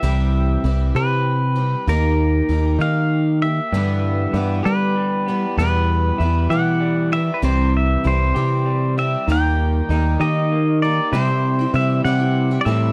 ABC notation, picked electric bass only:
X:1
M:6/8
L:1/8
Q:3/8=65
K:Clyd
V:1 name="Picked electric bass" clef=bass
C,,2 C,, C,3 | _E,,2 E,, _E,3 | G,,2 G,, G,3 | E,,2 E,, E,3 |
C,,2 C,, C,3 | _E,,2 E,, _E,3 | C,2 C, C,2 A,, |]